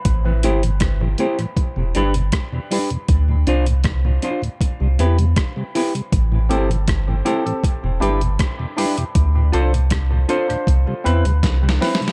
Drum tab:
HH |x-----x--x--x-----x--x--x-----x--x--x-----o--x--|x-----x--x--x-----x--x--x-----x--x--x-----o--x--|x-----x--x--x-----x--x--x-----x--x--x-----o--x--|x-----x--x--x-----x--x--x-----x--x--x-----o--x--|
SD |------------r-----------------------r-----------|------------r-----------------------r-----------|------------r-----------------------r-----------|------------r-----------------------o---o-o-o-o-|
BD |o-----------o-----------o-----------o-----------|o-----------o-----------o-----------o-----------|o-----------o-----------o-----------o-----------|o-----------o-----------o-----------o-----------|